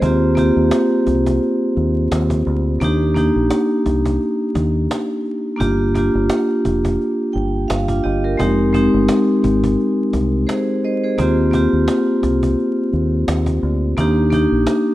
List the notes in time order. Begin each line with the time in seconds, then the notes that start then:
Already playing: G#4 C5
0.02 D#2 A#3 C4 F4 G4, cajon bass
0.35 A#3 C4 F4 G4, cajon bass
0.56 D#2
0.71 cajon slap
1.07 C2, cajon bass
1.26 cajon bass
1.43 cajon slap
1.77 D#2, cajon slap
2.12 D#2, cajon slap
2.30 cajon bass, cajon slap
2.46 D2, cajon slap
2.80 D#2 A#3 D4 D#4 G4, cajon bass
3.14 A#3 D4 D#4 G4, cajon bass
3.36 A#1
3.50 cajon slap
3.86 C2, cajon bass
4.06 cajon bass
4.22 cajon slap
4.55 D#2, cajon bass
4.91 cajon slap
5.25 cajon slap
5.56 A#3 D4 F4 G4, cajon bass
5.61 G1
5.95 A#3 D4 F4 G4, cajon bass
6.15 G1
6.29 cajon slap
6.65 F1, cajon bass
6.85 cajon bass
7.01 cajon slap
7.33 G1 G5, cajon slap
7.68 G1 F5, cajon slap
7.88 D4 F4, cajon bass
8.04 G1 G4 D#5, cajon slap
8.24 G4 A#4
8.37 F1 G#3 C4 D#4 G4, cajon bass
8.73 G#3 C4 D#4 G4, cajon bass
8.94 G1
9.09 cajon slap
9.44 G#1, cajon bass
9.64 cajon bass
9.80 cajon slap
10.13 C2, cajon bass
10.47 G#4 C5, cajon slap
10.83 C5 D#5, cajon slap
11.04 G#4 C5
11.18 D#2 A#3 C4 F4 G4, cajon bass
11.51 A#3 C4 F4 G4, cajon bass
11.73 D#2
11.88 cajon slap
12.23 C2, cajon bass
12.43 cajon bass
12.59 cajon slap
12.93 D#2, cajon slap
13.28 D#2, cajon slap
13.46 cajon bass, cajon slap
13.62 D2, cajon slap
13.97 D#2 A#3 D4 D#4 G4, cajon bass
14.31 A#3 D4 D#4 G4, cajon bass
14.52 A#1
14.67 cajon slap